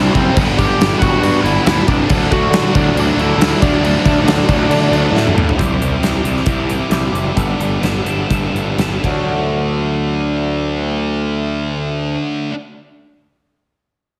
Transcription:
Already playing: distorted electric guitar C3 G3 C4 E4, lead electric guitar D4 D5
0.11 picked electric bass F#1, lead electric guitar C4 C5, distorted electric guitar E4, kick, crash
0.16 distorted electric guitar G3 C4
0.35 picked electric bass G1, distorted electric guitar G2 D3 G3 B3 D4, kick, crash
0.56 picked electric bass G1, distorted electric guitar G3 B3 D4, lead electric guitar G4 G5, kick, crash
0.78 picked electric bass G1, distorted electric guitar G2 D3 G3 B3 D4, crash
0.82 snare
0.99 picked electric bass G1, overdriven electric guitar G2 D3, distorted electric guitar B3 D4, lead electric guitar F#5, kick, crash
1.03 distorted electric guitar G2 D3 G3, lead electric guitar F#4
1.19 picked electric bass G2, distorted electric guitar D3, lead electric guitar F#5
1.23 distorted electric guitar G3 B3 D4, lead electric guitar F#4, crash
1.40 picked electric bass G1, distorted electric guitar B3 D4, lead electric guitar E4 E5
1.45 distorted electric guitar G3, crash
1.63 picked electric bass D2, overdriven electric guitar G2, distorted electric guitar G2 D3, lead electric guitar E5, crash
1.67 distorted electric guitar G3 B3 D4, lead electric guitar E4, snare
1.87 picked electric bass C2, distorted electric guitar B3 D4, lead electric guitar D4 D5, kick, crash
1.92 distorted electric guitar G3
2.09 picked electric bass D2, distorted electric guitar D3 F#3 A3 D4, kick, crash
2.31 picked electric bass D2, distorted electric guitar F#3 A3 D4, lead electric guitar F#4 F#5, kick, crash
2.50 picked electric bass D3, distorted electric guitar D3 A3, snare, crash
2.54 distorted electric guitar F#3 D4
2.74 picked electric bass D2, overdriven electric guitar D3, distorted electric guitar F#3 A3 D4, lead electric guitar D4 D5, kick, crash
2.78 distorted electric guitar D3
2.95 picked electric bass D2, distorted electric guitar D3 F#3 A3 D4, crash
3.00 lead electric guitar D4 D5
3.17 picked electric bass D2, distorted electric guitar A3 D4, lead electric guitar E4 E5, crash
3.21 distorted electric guitar F#3
3.38 picked electric bass D2, distorted electric guitar D3 F#3, crash
3.42 distorted electric guitar A3 D4, snare
3.57 overdriven electric guitar D3 A3
3.62 picked electric bass D2, distorted electric guitar D3 F#3 A3 D4, lead electric guitar D4 D5, kick, crash
3.81 picked electric bass D2, distorted electric guitar D3 F#3, crash
3.85 distorted electric guitar A3 D4
4.05 picked electric bass D2, distorted electric guitar F#3 A3 D4, kick, crash
4.24 picked electric bass D2, distorted electric guitar D3 F#3 A3, crash
4.28 distorted electric guitar D4, snare
4.48 picked electric bass D2, distorted electric guitar D3 F#3 A3 D4, kick, crash
4.69 distorted electric guitar D3 F#3 A3 D4, picked electric bass D3, crash
4.91 picked electric bass D2, overdriven electric guitar D3, distorted electric guitar F#3 A3 D4, crash
5.12 picked electric bass A2, distorted electric guitar D3 F#3 A3 D4
5.16 snare
5.27 mid tom
5.34 picked electric bass A2, distorted electric guitar A3 D4, mid tom
5.39 distorted electric guitar F#3
5.49 floor tom
5.55 distorted electric guitar C3 G3 C4 E4, clean electric guitar E3, kick
5.59 picked electric bass C2, clean electric guitar G4, closed hi-hat
5.78 picked electric bass C2, distorted electric guitar G3 C4 E4, clean electric guitar G4
5.82 closed hi-hat
5.99 picked electric bass C2, distorted electric guitar C3 G3 C4 E4, clean electric guitar E3
6.03 clean electric guitar G4, snare, closed hi-hat
6.22 picked electric bass C2, clean electric guitar C3 E3 G4, distorted electric guitar G3 C4 E4, closed hi-hat
6.36 snare
6.45 picked electric bass C2, distorted electric guitar C3 G3 C4 E4, clean electric guitar E3 G4, kick, closed hi-hat
6.66 distorted electric guitar G3 C4 E4, clean electric guitar G4, closed hi-hat
6.88 picked electric bass C2, distorted electric guitar C3 G3 C4 E4, clean electric guitar E3, snare, closed hi-hat
6.93 clean electric guitar G4
7.12 picked electric bass F#1, clean electric guitar G3 E4 G4, closed hi-hat
7.33 picked electric bass G1, distorted electric guitar G2 D3 G3 B3 D4, kick
7.37 clean electric guitar A4, closed hi-hat
7.57 picked electric bass G1, distorted electric guitar G3 B3 D4, clean electric guitar A4, closed hi-hat
7.80 picked electric bass G1, distorted electric guitar D3 G3 B3 D4, clean electric guitar A4, closed hi-hat
7.84 snare
8.02 picked electric bass G1, distorted electric guitar G3 B3 D4, clean electric guitar A4, closed hi-hat
8.06 clean electric guitar D4
8.27 picked electric bass G1, distorted electric guitar G2 D3 G3 B3 D4, kick
8.31 clean electric guitar A4, closed hi-hat
8.51 picked electric bass G1, distorted electric guitar G3 B3 D4, clean electric guitar A4
8.55 clean electric guitar B3 D4, closed hi-hat
8.75 picked electric bass G1, distorted electric guitar D3 G3 B3 D4, snare, closed hi-hat
8.80 clean electric guitar A4
9.00 distorted electric guitar D3 A3, clean electric guitar F#3
9.04 picked electric bass D2, distorted electric guitar D4, clean electric guitar F#4, kick, crash

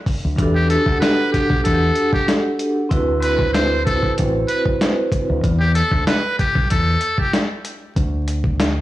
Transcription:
0.06 kick, open hi-hat
0.25 fingered electric bass D2
0.37 fingered electric bass E2, vibraphone D4 F#4 G4, kick, closed hi-hat
0.42 vibraphone A4
0.55 muted trumpet G4
0.68 vibraphone D4 F#4 G4, muted trumpet A4, closed hi-hat
0.72 vibraphone A4
0.86 fingered electric bass D2, vibraphone D4 G4 A4 F#5, kick
1.00 muted trumpet B4, snare, closed hi-hat
1.33 muted trumpet G4, kick, closed hi-hat
1.50 fingered electric bass B1, kick
1.64 fingered electric bass E2, muted trumpet A4, kick, closed hi-hat
1.95 closed hi-hat
2.13 muted trumpet G4, kick
2.28 snare, closed hi-hat
2.59 closed hi-hat
2.89 fingered electric bass D2, vibraphone C4 E4 F#4, kick, closed hi-hat
2.93 vibraphone B4
3.21 vibraphone C4 E4 F#4, muted trumpet B4, closed hi-hat
3.25 vibraphone B4
3.38 vibraphone C4 E4 F#4 C5, kick
3.53 muted trumpet C5, snare, closed hi-hat
3.86 muted trumpet A4, kick, closed hi-hat
4.03 kick
4.18 fingered electric bass A1, kick, closed hi-hat
4.48 muted trumpet B4, closed hi-hat
4.66 kick
4.81 snare, closed hi-hat
5.12 kick, closed hi-hat
5.30 fingered electric bass D2
5.44 fingered electric bass E2, kick, closed hi-hat
5.60 muted trumpet G4
5.75 muted trumpet A4, closed hi-hat
5.91 fingered electric bass D2, kick
6.07 muted trumpet B4, snare, closed hi-hat
6.39 muted trumpet G4, kick, closed hi-hat
6.55 fingered electric bass B1, kick
6.70 fingered electric bass E2, muted trumpet A4, kick, closed hi-hat
7.01 closed hi-hat
7.18 muted trumpet G4, kick
7.33 snare, closed hi-hat
7.65 closed hi-hat
7.96 fingered electric bass D2, kick, closed hi-hat
8.28 closed hi-hat
8.44 kick
8.60 snare, closed hi-hat

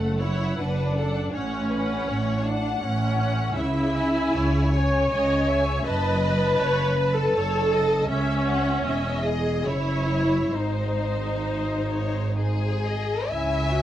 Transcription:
Already playing: double bass section F#1, cello section F#2, viola section A3, violin section A4 F#5
0.19 viola section E4, violin section C#5 F#5
0.57 double bass section F#1, cello section F#2, viola section D4, violin section B4
0.95 violin section A4 F#5
1.33 double bass section A1, cello section A2, viola section C#4, violin section C#5 F#5
1.71 violin section B4 F#5
2.06 double bass section A1, cello section A2, violin section C#5
2.44 viola section D4, violin section F#5
2.81 double bass section A1, cello section A2, viola section C#4
3.20 violin section F#5
3.56 double bass section C#2, cello section C#3, viola section E4, violin section E5
3.95 violin section G#5
4.33 double bass section C#2, cello section C#3, violin section C#5
4.74 viola section C#5, violin section G#5
5.11 double bass section C#2, cello section C#3, violin section D#5
5.49 violin section E5 G#5
5.86 double bass section F#1, cello section F#2, viola section B4, violin section D#5 A5
6.24 violin section A5
6.59 double bass section F#1, cello section F#2, violin section C#5
6.97 violin section B4 A5
7.15 viola section A4
7.33 double bass section F#1, cello section F#2, violin section C#5
7.71 violin section D#5 A5
8.08 cello section C#2, double bass section C#2, viola section C#4, violin section E5
8.49 violin section F#5
8.84 double bass section E1, cello section E2, violin section D#5 E5
9.24 viola section G#4, violin section D#5
9.65 double bass section F#1, cello section F#2, viola section E4, violin section C#5
10.51 double bass section G#1, cello section G#2, viola section D#4, violin section C5
11.42 violin section C5
11.90 violin section C#5
12.37 violin section G#4 C5
12.86 violin section D#5
13.28 double bass section C#2, cello section C#3, viola section C#4 E4, violin section E5 G#5
13.70 viola section F#4

